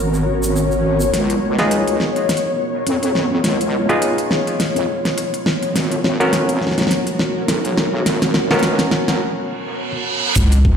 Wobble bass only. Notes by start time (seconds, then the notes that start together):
Already playing: G#1
1.13 C#2
1.58 C#2
2.86 F2
3.43 C#2
4.75 F2
5.74 G#1
6.19 G#1
7.47 B1
8.05 G#1
8.50 C#2
9.07 G#1
10.36 C#2